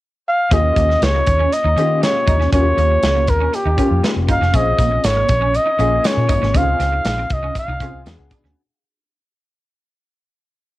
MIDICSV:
0, 0, Header, 1, 7, 480
1, 0, Start_track
1, 0, Tempo, 503356
1, 492, Time_signature, 4, 2, 24, 8
1, 10287, End_track
2, 0, Start_track
2, 0, Title_t, "Flugelhorn"
2, 0, Program_c, 0, 56
2, 268, Note_on_c, 0, 77, 91
2, 506, Note_on_c, 0, 75, 93
2, 521, Note_off_c, 0, 77, 0
2, 985, Note_on_c, 0, 73, 97
2, 1000, Note_off_c, 0, 75, 0
2, 1459, Note_on_c, 0, 75, 93
2, 1474, Note_off_c, 0, 73, 0
2, 1933, Note_off_c, 0, 75, 0
2, 1940, Note_on_c, 0, 73, 86
2, 2380, Note_off_c, 0, 73, 0
2, 2412, Note_on_c, 0, 73, 90
2, 3140, Note_on_c, 0, 70, 78
2, 3154, Note_off_c, 0, 73, 0
2, 3382, Note_on_c, 0, 67, 69
2, 3396, Note_off_c, 0, 70, 0
2, 3853, Note_off_c, 0, 67, 0
2, 4105, Note_on_c, 0, 77, 92
2, 4343, Note_on_c, 0, 75, 83
2, 4357, Note_off_c, 0, 77, 0
2, 4819, Note_on_c, 0, 73, 92
2, 4834, Note_off_c, 0, 75, 0
2, 5305, Note_on_c, 0, 75, 96
2, 5320, Note_off_c, 0, 73, 0
2, 5783, Note_on_c, 0, 73, 83
2, 5798, Note_off_c, 0, 75, 0
2, 6270, Note_on_c, 0, 77, 90
2, 6284, Note_off_c, 0, 73, 0
2, 6991, Note_on_c, 0, 75, 76
2, 7005, Note_off_c, 0, 77, 0
2, 7218, Note_off_c, 0, 75, 0
2, 7234, Note_on_c, 0, 77, 82
2, 7668, Note_off_c, 0, 77, 0
2, 10287, End_track
3, 0, Start_track
3, 0, Title_t, "Grand piano"
3, 0, Program_c, 1, 0
3, 491, Note_on_c, 1, 58, 64
3, 493, Note_on_c, 1, 61, 59
3, 500, Note_on_c, 1, 65, 59
3, 503, Note_on_c, 1, 67, 71
3, 673, Control_c, 1, 64, 127
3, 1198, Note_off_c, 1, 58, 0
3, 1200, Note_off_c, 1, 61, 0
3, 1203, Note_off_c, 1, 65, 0
3, 1204, Note_off_c, 1, 67, 0
3, 1690, Note_on_c, 1, 58, 76
3, 1693, Note_on_c, 1, 61, 64
3, 1697, Note_on_c, 1, 65, 63
3, 1702, Note_on_c, 1, 67, 80
3, 2220, Note_off_c, 1, 58, 0
3, 2221, Note_off_c, 1, 61, 0
3, 2223, Note_off_c, 1, 65, 0
3, 2226, Note_off_c, 1, 67, 0
3, 2410, Note_on_c, 1, 58, 61
3, 2413, Note_on_c, 1, 61, 59
3, 2420, Note_on_c, 1, 65, 64
3, 2422, Note_on_c, 1, 66, 57
3, 2472, Note_off_c, 1, 66, 0
3, 2481, Note_on_c, 1, 67, 68
3, 3116, Note_off_c, 1, 58, 0
3, 3117, Note_off_c, 1, 61, 0
3, 3121, Note_off_c, 1, 65, 0
3, 3151, Note_off_c, 1, 67, 0
3, 3602, Note_on_c, 1, 58, 71
3, 3606, Note_on_c, 1, 61, 68
3, 3608, Note_on_c, 1, 65, 68
3, 3613, Note_on_c, 1, 67, 82
3, 4134, Note_off_c, 1, 58, 0
3, 4136, Note_off_c, 1, 61, 0
3, 4137, Note_off_c, 1, 65, 0
3, 4140, Note_off_c, 1, 67, 0
3, 4318, Note_on_c, 1, 60, 64
3, 4323, Note_on_c, 1, 61, 66
3, 4327, Note_on_c, 1, 65, 57
3, 4330, Note_on_c, 1, 68, 69
3, 4334, Control_c, 1, 64, 0
3, 4488, Control_c, 1, 64, 127
3, 5029, Note_off_c, 1, 60, 0
3, 5031, Note_off_c, 1, 61, 0
3, 5033, Note_off_c, 1, 65, 0
3, 5035, Note_off_c, 1, 68, 0
3, 5519, Note_on_c, 1, 58, 79
3, 5523, Note_on_c, 1, 61, 65
3, 5529, Note_on_c, 1, 65, 71
3, 5530, Note_on_c, 1, 68, 83
3, 6053, Note_off_c, 1, 58, 0
3, 6055, Note_off_c, 1, 61, 0
3, 6058, Note_off_c, 1, 65, 0
3, 6058, Note_off_c, 1, 68, 0
3, 6244, Note_on_c, 1, 60, 61
3, 6249, Note_on_c, 1, 63, 57
3, 6251, Note_on_c, 1, 65, 59
3, 6255, Note_on_c, 1, 67, 52
3, 6257, Control_c, 1, 64, 0
3, 6307, Note_off_c, 1, 67, 0
3, 6312, Note_on_c, 1, 68, 70
3, 6451, Control_c, 1, 64, 127
3, 6953, Note_off_c, 1, 60, 0
3, 6956, Note_off_c, 1, 63, 0
3, 6956, Note_off_c, 1, 65, 0
3, 6987, Note_off_c, 1, 68, 0
3, 7446, Note_on_c, 1, 60, 71
3, 7450, Note_on_c, 1, 63, 62
3, 7454, Note_on_c, 1, 65, 70
3, 7457, Note_on_c, 1, 68, 83
3, 7679, Note_off_c, 1, 68, 0
3, 7685, Note_on_c, 1, 59, 70
3, 7686, Note_off_c, 1, 60, 0
3, 7686, Note_on_c, 1, 62, 63
3, 7688, Note_off_c, 1, 63, 0
3, 7690, Note_off_c, 1, 65, 0
3, 7691, Note_on_c, 1, 66, 66
3, 7693, Note_on_c, 1, 68, 87
3, 7695, Control_c, 1, 64, 0
3, 7846, Control_c, 1, 64, 127
3, 8070, Note_off_c, 1, 59, 0
3, 8071, Note_off_c, 1, 62, 0
3, 8073, Note_off_c, 1, 66, 0
3, 8074, Note_off_c, 1, 68, 0
3, 8178, Control_c, 1, 64, 0
3, 10287, End_track
4, 0, Start_track
4, 0, Title_t, "Clean electric guitar"
4, 0, Program_c, 2, 27
4, 486, Note_on_c, 2, 61, 72
4, 586, Note_off_c, 2, 61, 0
4, 729, Note_on_c, 2, 58, 61
4, 828, Note_off_c, 2, 58, 0
4, 1095, Note_on_c, 2, 58, 58
4, 1191, Note_off_c, 2, 58, 0
4, 1328, Note_on_c, 2, 61, 74
4, 1426, Note_off_c, 2, 61, 0
4, 1566, Note_on_c, 2, 63, 68
4, 1665, Note_off_c, 2, 63, 0
4, 1683, Note_on_c, 2, 61, 75
4, 1783, Note_off_c, 2, 61, 0
4, 2160, Note_on_c, 2, 63, 83
4, 2261, Note_off_c, 2, 63, 0
4, 2284, Note_on_c, 2, 61, 59
4, 2383, Note_off_c, 2, 61, 0
4, 2407, Note_on_c, 2, 61, 72
4, 2505, Note_off_c, 2, 61, 0
4, 2647, Note_on_c, 2, 58, 76
4, 2744, Note_off_c, 2, 58, 0
4, 3005, Note_on_c, 2, 58, 70
4, 3103, Note_off_c, 2, 58, 0
4, 3244, Note_on_c, 2, 61, 76
4, 3342, Note_off_c, 2, 61, 0
4, 3484, Note_on_c, 2, 63, 61
4, 3582, Note_off_c, 2, 63, 0
4, 3601, Note_on_c, 2, 61, 84
4, 3701, Note_off_c, 2, 61, 0
4, 4084, Note_on_c, 2, 63, 80
4, 4182, Note_off_c, 2, 63, 0
4, 4207, Note_on_c, 2, 61, 66
4, 4303, Note_off_c, 2, 61, 0
4, 4325, Note_on_c, 2, 61, 80
4, 4422, Note_off_c, 2, 61, 0
4, 4564, Note_on_c, 2, 58, 67
4, 4662, Note_off_c, 2, 58, 0
4, 4922, Note_on_c, 2, 58, 59
4, 5020, Note_off_c, 2, 58, 0
4, 5160, Note_on_c, 2, 61, 78
4, 5259, Note_off_c, 2, 61, 0
4, 5398, Note_on_c, 2, 63, 71
4, 5498, Note_off_c, 2, 63, 0
4, 5521, Note_on_c, 2, 61, 83
4, 5620, Note_off_c, 2, 61, 0
4, 5997, Note_on_c, 2, 63, 84
4, 6097, Note_off_c, 2, 63, 0
4, 6121, Note_on_c, 2, 61, 66
4, 6220, Note_off_c, 2, 61, 0
4, 6238, Note_on_c, 2, 61, 78
4, 6338, Note_off_c, 2, 61, 0
4, 6483, Note_on_c, 2, 60, 67
4, 6581, Note_off_c, 2, 60, 0
4, 6850, Note_on_c, 2, 60, 70
4, 6945, Note_off_c, 2, 60, 0
4, 7084, Note_on_c, 2, 61, 80
4, 7182, Note_off_c, 2, 61, 0
4, 7327, Note_on_c, 2, 63, 67
4, 7424, Note_off_c, 2, 63, 0
4, 7449, Note_on_c, 2, 61, 83
4, 7546, Note_off_c, 2, 61, 0
4, 7924, Note_on_c, 2, 62, 80
4, 8023, Note_off_c, 2, 62, 0
4, 8046, Note_on_c, 2, 61, 67
4, 8144, Note_off_c, 2, 61, 0
4, 10287, End_track
5, 0, Start_track
5, 0, Title_t, "Fingered electric bass"
5, 0, Program_c, 3, 33
5, 491, Note_on_c, 3, 39, 93
5, 665, Note_off_c, 3, 39, 0
5, 728, Note_on_c, 3, 39, 90
5, 903, Note_off_c, 3, 39, 0
5, 970, Note_on_c, 3, 37, 76
5, 1144, Note_off_c, 3, 37, 0
5, 1214, Note_on_c, 3, 39, 77
5, 1386, Note_off_c, 3, 39, 0
5, 1567, Note_on_c, 3, 39, 82
5, 1655, Note_off_c, 3, 39, 0
5, 1686, Note_on_c, 3, 51, 83
5, 1947, Note_off_c, 3, 51, 0
5, 2167, Note_on_c, 3, 39, 86
5, 2341, Note_off_c, 3, 39, 0
5, 2407, Note_on_c, 3, 39, 97
5, 2581, Note_off_c, 3, 39, 0
5, 2644, Note_on_c, 3, 39, 98
5, 2819, Note_off_c, 3, 39, 0
5, 2886, Note_on_c, 3, 37, 74
5, 3129, Note_off_c, 3, 37, 0
5, 3129, Note_on_c, 3, 39, 80
5, 3301, Note_off_c, 3, 39, 0
5, 3484, Note_on_c, 3, 39, 74
5, 3571, Note_off_c, 3, 39, 0
5, 3726, Note_on_c, 3, 41, 80
5, 3812, Note_off_c, 3, 41, 0
5, 3967, Note_on_c, 3, 29, 70
5, 4085, Note_off_c, 3, 29, 0
5, 4085, Note_on_c, 3, 31, 82
5, 4172, Note_off_c, 3, 31, 0
5, 4207, Note_on_c, 3, 29, 74
5, 4293, Note_off_c, 3, 29, 0
5, 4327, Note_on_c, 3, 34, 93
5, 4500, Note_off_c, 3, 34, 0
5, 4563, Note_on_c, 3, 34, 90
5, 4737, Note_off_c, 3, 34, 0
5, 4807, Note_on_c, 3, 32, 85
5, 4980, Note_off_c, 3, 32, 0
5, 5047, Note_on_c, 3, 34, 73
5, 5307, Note_off_c, 3, 34, 0
5, 5523, Note_on_c, 3, 34, 92
5, 5697, Note_off_c, 3, 34, 0
5, 5885, Note_on_c, 3, 46, 83
5, 5972, Note_off_c, 3, 46, 0
5, 6003, Note_on_c, 3, 31, 83
5, 6091, Note_off_c, 3, 31, 0
5, 6126, Note_on_c, 3, 32, 78
5, 6212, Note_off_c, 3, 32, 0
5, 6242, Note_on_c, 3, 37, 103
5, 6417, Note_off_c, 3, 37, 0
5, 6482, Note_on_c, 3, 37, 87
5, 6657, Note_off_c, 3, 37, 0
5, 6722, Note_on_c, 3, 34, 76
5, 6897, Note_off_c, 3, 34, 0
5, 6963, Note_on_c, 3, 36, 77
5, 7138, Note_off_c, 3, 36, 0
5, 7323, Note_on_c, 3, 36, 85
5, 7411, Note_off_c, 3, 36, 0
5, 7441, Note_on_c, 3, 48, 80
5, 7529, Note_off_c, 3, 48, 0
5, 7563, Note_on_c, 3, 36, 72
5, 7651, Note_off_c, 3, 36, 0
5, 7682, Note_on_c, 3, 40, 85
5, 7770, Note_off_c, 3, 40, 0
5, 8046, Note_on_c, 3, 38, 74
5, 8133, Note_off_c, 3, 38, 0
5, 10287, End_track
6, 0, Start_track
6, 0, Title_t, "Muted clean electric guitar strokes"
6, 851, Note_on_c, 9, 29, 40
6, 946, Note_off_c, 9, 29, 0
6, 1210, Note_on_c, 9, 29, 41
6, 1305, Note_off_c, 9, 29, 0
6, 1452, Note_on_c, 9, 29, 41
6, 1547, Note_off_c, 9, 29, 0
6, 1924, Note_on_c, 9, 29, 39
6, 2020, Note_off_c, 9, 29, 0
6, 2769, Note_on_c, 9, 29, 40
6, 2864, Note_off_c, 9, 29, 0
6, 3124, Note_on_c, 9, 29, 34
6, 3219, Note_off_c, 9, 29, 0
6, 3365, Note_on_c, 9, 29, 41
6, 3460, Note_off_c, 9, 29, 0
6, 3846, Note_on_c, 9, 29, 42
6, 3941, Note_off_c, 9, 29, 0
6, 4684, Note_on_c, 9, 29, 44
6, 4779, Note_off_c, 9, 29, 0
6, 5043, Note_on_c, 9, 29, 39
6, 5138, Note_off_c, 9, 29, 0
6, 5283, Note_on_c, 9, 29, 42
6, 5378, Note_off_c, 9, 29, 0
6, 5764, Note_on_c, 9, 29, 41
6, 5859, Note_off_c, 9, 29, 0
6, 6604, Note_on_c, 9, 29, 46
6, 6699, Note_off_c, 9, 29, 0
6, 6971, Note_on_c, 9, 29, 40
6, 7066, Note_off_c, 9, 29, 0
6, 7209, Note_on_c, 9, 29, 44
6, 7304, Note_off_c, 9, 29, 0
6, 7684, Note_on_c, 9, 29, 40
6, 7780, Note_off_c, 9, 29, 0
6, 10287, End_track
7, 0, Start_track
7, 0, Title_t, "Drums"
7, 491, Note_on_c, 9, 36, 106
7, 493, Note_on_c, 9, 42, 100
7, 587, Note_off_c, 9, 36, 0
7, 588, Note_off_c, 9, 42, 0
7, 729, Note_on_c, 9, 36, 80
7, 736, Note_on_c, 9, 42, 69
7, 824, Note_off_c, 9, 36, 0
7, 831, Note_off_c, 9, 42, 0
7, 862, Note_on_c, 9, 38, 28
7, 958, Note_off_c, 9, 38, 0
7, 972, Note_on_c, 9, 42, 92
7, 980, Note_on_c, 9, 38, 110
7, 1068, Note_off_c, 9, 42, 0
7, 1076, Note_off_c, 9, 38, 0
7, 1205, Note_on_c, 9, 42, 67
7, 1213, Note_on_c, 9, 36, 81
7, 1301, Note_off_c, 9, 42, 0
7, 1308, Note_off_c, 9, 36, 0
7, 1454, Note_on_c, 9, 42, 80
7, 1549, Note_off_c, 9, 42, 0
7, 1692, Note_on_c, 9, 42, 59
7, 1787, Note_off_c, 9, 42, 0
7, 1934, Note_on_c, 9, 42, 81
7, 1937, Note_on_c, 9, 38, 103
7, 2029, Note_off_c, 9, 42, 0
7, 2032, Note_off_c, 9, 38, 0
7, 2167, Note_on_c, 9, 42, 61
7, 2168, Note_on_c, 9, 36, 93
7, 2263, Note_off_c, 9, 36, 0
7, 2263, Note_off_c, 9, 42, 0
7, 2298, Note_on_c, 9, 38, 30
7, 2393, Note_off_c, 9, 38, 0
7, 2407, Note_on_c, 9, 42, 91
7, 2408, Note_on_c, 9, 36, 93
7, 2503, Note_off_c, 9, 42, 0
7, 2504, Note_off_c, 9, 36, 0
7, 2652, Note_on_c, 9, 42, 73
7, 2747, Note_off_c, 9, 42, 0
7, 2885, Note_on_c, 9, 42, 85
7, 2893, Note_on_c, 9, 38, 115
7, 2981, Note_off_c, 9, 42, 0
7, 2989, Note_off_c, 9, 38, 0
7, 3120, Note_on_c, 9, 42, 75
7, 3129, Note_on_c, 9, 36, 81
7, 3216, Note_off_c, 9, 42, 0
7, 3224, Note_off_c, 9, 36, 0
7, 3371, Note_on_c, 9, 42, 80
7, 3466, Note_off_c, 9, 42, 0
7, 3603, Note_on_c, 9, 36, 78
7, 3609, Note_on_c, 9, 42, 68
7, 3699, Note_off_c, 9, 36, 0
7, 3704, Note_off_c, 9, 42, 0
7, 3851, Note_on_c, 9, 42, 72
7, 3854, Note_on_c, 9, 38, 106
7, 3946, Note_off_c, 9, 42, 0
7, 3949, Note_off_c, 9, 38, 0
7, 4085, Note_on_c, 9, 42, 67
7, 4086, Note_on_c, 9, 36, 90
7, 4180, Note_off_c, 9, 42, 0
7, 4181, Note_off_c, 9, 36, 0
7, 4216, Note_on_c, 9, 38, 32
7, 4312, Note_off_c, 9, 38, 0
7, 4326, Note_on_c, 9, 36, 98
7, 4326, Note_on_c, 9, 42, 95
7, 4421, Note_off_c, 9, 42, 0
7, 4422, Note_off_c, 9, 36, 0
7, 4564, Note_on_c, 9, 36, 85
7, 4568, Note_on_c, 9, 54, 43
7, 4571, Note_on_c, 9, 42, 76
7, 4659, Note_off_c, 9, 36, 0
7, 4663, Note_off_c, 9, 54, 0
7, 4667, Note_off_c, 9, 42, 0
7, 4805, Note_on_c, 9, 42, 99
7, 4807, Note_on_c, 9, 54, 74
7, 4812, Note_on_c, 9, 38, 113
7, 4900, Note_off_c, 9, 42, 0
7, 4902, Note_off_c, 9, 54, 0
7, 4908, Note_off_c, 9, 38, 0
7, 5042, Note_on_c, 9, 42, 79
7, 5047, Note_on_c, 9, 36, 90
7, 5051, Note_on_c, 9, 54, 29
7, 5138, Note_off_c, 9, 42, 0
7, 5143, Note_off_c, 9, 36, 0
7, 5146, Note_off_c, 9, 54, 0
7, 5288, Note_on_c, 9, 54, 48
7, 5290, Note_on_c, 9, 42, 82
7, 5384, Note_off_c, 9, 54, 0
7, 5386, Note_off_c, 9, 42, 0
7, 5527, Note_on_c, 9, 42, 61
7, 5531, Note_on_c, 9, 54, 35
7, 5622, Note_off_c, 9, 42, 0
7, 5626, Note_off_c, 9, 54, 0
7, 5763, Note_on_c, 9, 54, 81
7, 5769, Note_on_c, 9, 42, 78
7, 5772, Note_on_c, 9, 38, 118
7, 5859, Note_off_c, 9, 54, 0
7, 5864, Note_off_c, 9, 42, 0
7, 5867, Note_off_c, 9, 38, 0
7, 6000, Note_on_c, 9, 42, 71
7, 6002, Note_on_c, 9, 36, 99
7, 6005, Note_on_c, 9, 54, 54
7, 6096, Note_off_c, 9, 42, 0
7, 6097, Note_off_c, 9, 36, 0
7, 6101, Note_off_c, 9, 54, 0
7, 6133, Note_on_c, 9, 38, 33
7, 6228, Note_off_c, 9, 38, 0
7, 6243, Note_on_c, 9, 36, 100
7, 6244, Note_on_c, 9, 42, 93
7, 6248, Note_on_c, 9, 54, 31
7, 6338, Note_off_c, 9, 36, 0
7, 6339, Note_off_c, 9, 42, 0
7, 6344, Note_off_c, 9, 54, 0
7, 6486, Note_on_c, 9, 42, 73
7, 6490, Note_on_c, 9, 38, 31
7, 6494, Note_on_c, 9, 54, 49
7, 6582, Note_off_c, 9, 42, 0
7, 6586, Note_off_c, 9, 38, 0
7, 6589, Note_off_c, 9, 54, 0
7, 6721, Note_on_c, 9, 42, 94
7, 6729, Note_on_c, 9, 38, 115
7, 6730, Note_on_c, 9, 54, 66
7, 6816, Note_off_c, 9, 42, 0
7, 6824, Note_off_c, 9, 38, 0
7, 6825, Note_off_c, 9, 54, 0
7, 6959, Note_on_c, 9, 42, 74
7, 6965, Note_on_c, 9, 36, 79
7, 7055, Note_off_c, 9, 42, 0
7, 7060, Note_off_c, 9, 36, 0
7, 7202, Note_on_c, 9, 36, 79
7, 7206, Note_on_c, 9, 42, 83
7, 7206, Note_on_c, 9, 54, 46
7, 7297, Note_off_c, 9, 36, 0
7, 7301, Note_off_c, 9, 42, 0
7, 7301, Note_off_c, 9, 54, 0
7, 7441, Note_on_c, 9, 36, 79
7, 7445, Note_on_c, 9, 54, 32
7, 7447, Note_on_c, 9, 42, 74
7, 7537, Note_off_c, 9, 36, 0
7, 7540, Note_off_c, 9, 54, 0
7, 7542, Note_off_c, 9, 42, 0
7, 7685, Note_on_c, 9, 54, 74
7, 7691, Note_on_c, 9, 42, 82
7, 7694, Note_on_c, 9, 38, 114
7, 7780, Note_off_c, 9, 54, 0
7, 7786, Note_off_c, 9, 42, 0
7, 7789, Note_off_c, 9, 38, 0
7, 7923, Note_on_c, 9, 42, 73
7, 7924, Note_on_c, 9, 36, 89
7, 7926, Note_on_c, 9, 54, 51
7, 8018, Note_off_c, 9, 42, 0
7, 8019, Note_off_c, 9, 36, 0
7, 8021, Note_off_c, 9, 54, 0
7, 8053, Note_on_c, 9, 38, 31
7, 8148, Note_off_c, 9, 38, 0
7, 10287, End_track
0, 0, End_of_file